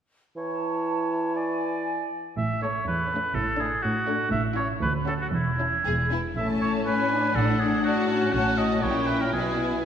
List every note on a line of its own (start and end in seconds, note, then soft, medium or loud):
0.37 2.07 E3 soft
0.37 1.38 C#5 soft
0.37 1.33 A5 soft
1.35 2.12 D5 soft
1.35 2.11 G#5 soft
2.37 2.77 A1 soft
2.37 2.77 A2 soft
2.37 2.61 E5 soft
2.62 2.81 A3 soft
2.62 2.81 C#4 soft
2.62 2.87 C#5 soft
2.62 2.82 A5 soft
2.87 3.26 E2 soft
2.87 3.36 B4 soft
3.12 3.30 A3 soft
3.12 3.30 C#4 soft
3.12 3.30 A5 soft
3.35 3.74 A1 soft
3.35 3.74 A2 soft
3.35 3.62 A4 medium
3.59 3.78 A3 soft
3.59 3.78 D4 soft
3.59 3.84 G#4 medium
3.59 3.78 A5 soft
3.83 4.22 A2 soft
3.83 4.31 F#4 medium
4.07 4.26 A3 soft
4.07 4.26 D4 soft
4.07 4.25 A5 soft
4.31 4.71 A1 soft
4.31 4.71 A2 soft
4.31 4.43 E5 medium
4.56 4.75 C#4 soft
4.56 4.75 E4 soft
4.56 4.68 C#5 medium
4.56 4.75 A5 soft
4.81 5.22 D2 soft
4.81 5.23 D2 soft
4.81 4.94 B4 medium
5.07 5.27 C#4 soft
5.07 5.27 F#4 soft
5.07 5.13 A4 soft
5.07 5.26 A5 soft
5.21 5.27 F#4 soft
5.33 5.74 E1 soft
5.33 5.74 E2 soft
5.33 6.10 E4 soft
5.58 5.79 C#4 soft
5.58 5.78 E4 soft
5.58 5.78 A5 soft
5.84 6.26 E1 soft
5.84 6.26 E2 soft
5.84 5.93 G#4 soft
6.11 6.30 B3 soft
6.11 6.19 E4 soft
6.11 6.30 G#5 soft
6.36 6.83 A1 soft
6.36 7.32 A2 soft
6.36 6.83 A3 soft
6.36 7.32 C#4 soft
6.36 6.48 E5 soft
6.36 6.84 A5 soft
6.61 6.73 C#5 soft
6.86 7.11 C#4 soft
6.86 7.37 B4 medium
6.86 7.35 G#5 soft
7.10 7.83 D4 soft
7.35 7.81 A1 soft
7.35 8.32 A2 soft
7.35 7.85 D4 soft
7.35 7.61 A4 medium
7.35 7.85 F#5 soft
7.60 7.83 G#4 medium
7.84 8.09 D4 soft
7.84 8.34 F#4 medium
7.84 8.33 F#4 soft
7.84 8.32 A5 soft
8.09 8.81 C#4 soft
8.33 8.80 A1 soft
8.33 8.82 A2 soft
8.33 8.83 F#4 soft
8.33 8.59 F#5 medium
8.33 8.82 A5 soft
8.58 8.84 D#5 medium
8.82 9.31 A#1 soft
8.82 9.34 A#2 soft
8.82 9.32 C#4 soft
8.82 9.33 E4 soft
8.82 9.08 C#5 soft
8.82 9.34 G5 soft
9.07 9.23 B4 soft
9.21 9.32 A#4 soft
9.33 9.82 B1 soft
9.33 9.84 B2 soft
9.33 9.84 B3 soft
9.33 9.85 E4 soft
9.33 9.84 G#4 soft
9.33 9.85 G#5 soft